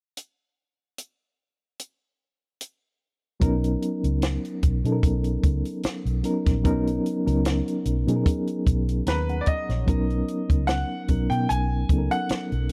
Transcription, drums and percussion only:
0.17 closed hi-hat
0.98 closed hi-hat
1.79 closed hi-hat
2.61 closed hi-hat
3.41 kick, closed hi-hat
3.64 closed hi-hat
3.82 closed hi-hat
4.04 closed hi-hat
4.22 snare, closed hi-hat
4.45 closed hi-hat
4.63 kick, closed hi-hat
4.85 closed hi-hat
5.03 kick, closed hi-hat
5.24 closed hi-hat
5.43 kick, closed hi-hat
5.65 closed hi-hat
5.83 snare, closed hi-hat
6.06 closed hi-hat
6.24 closed hi-hat
6.46 kick, snare, closed hi-hat
6.65 kick, closed hi-hat
6.87 closed hi-hat
7.06 closed hi-hat
7.27 closed hi-hat
7.45 snare, closed hi-hat
7.68 closed hi-hat
7.85 closed hi-hat
8.08 closed hi-hat
8.26 kick, closed hi-hat
8.47 closed hi-hat
8.67 kick, closed hi-hat
8.89 closed hi-hat
9.07 snare, closed hi-hat
9.29 closed hi-hat
9.46 kick, closed hi-hat
9.70 snare, closed hi-hat
9.88 kick, closed hi-hat
10.10 closed hi-hat
10.28 closed hi-hat
10.50 kick, closed hi-hat
10.68 snare, closed hi-hat
11.08 kick, closed hi-hat
11.31 closed hi-hat
11.50 closed hi-hat
11.89 kick, closed hi-hat
12.11 closed hi-hat
12.29 snare, closed hi-hat
12.52 closed hi-hat

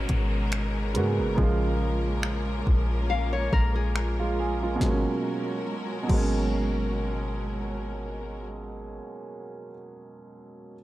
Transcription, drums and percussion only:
0.09 kick, closed hi-hat
0.52 finger snap, closed hi-hat
0.95 closed hi-hat
1.38 kick
2.23 finger snap
2.67 kick
3.53 kick
3.96 finger snap
4.81 kick, snare
6.09 kick, crash

